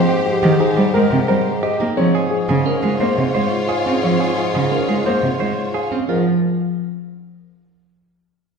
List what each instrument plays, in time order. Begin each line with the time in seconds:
Already playing: bassoon G#2, clean electric guitar C4, string section G4 C5, grand piano C5
0.09 clean electric guitar G4
0.26 grand piano G4
0.43 cello D#3, clean electric guitar G4
0.60 clean electric guitar D#4, grand piano G#4
0.77 cello G3, clean electric guitar G4
0.94 cello G#3, grand piano A#4, clean electric guitar A#4
1.11 cello C3
1.28 cello G3, clean electric guitar A#4, grand piano C5
1.63 clean electric guitar G4, grand piano D#5
1.80 cello A#3, clean electric guitar D#4
1.97 bassoon G#2, cello F3, clean electric guitar C4, string section F4 C#5, grand piano C#5
2.15 clean electric guitar G#4
2.31 grand piano G#4
2.49 cello C#3, clean electric guitar G#4
2.66 clean electric guitar C#4, grand piano A#4
2.83 cello G#3, clean electric guitar G#4
3.00 cello A#3, clean electric guitar C5, grand piano C5
3.18 cello C3
3.35 cello G#3, clean electric guitar C5, grand piano C#5
3.68 clean electric guitar G#4, grand piano F5
3.86 cello C4, clean electric guitar C#4
4.03 cello F3, clean electric guitar C4, grand piano C#5
4.20 clean electric guitar G#4
4.38 grand piano G#4
4.54 cello C#3, clean electric guitar G#4
4.72 clean electric guitar C#4, grand piano A#4
4.89 cello G#3, clean electric guitar G#4
5.06 cello A#3, clean electric guitar C5, grand piano C5
5.23 cello C3
5.40 cello G#3, clean electric guitar C5, grand piano C#5
5.74 clean electric guitar G#4, grand piano F5
5.91 cello C4, clean electric guitar C#4
6.08 bassoon G#2, cello F3, clean electric guitar F4, grand piano A#4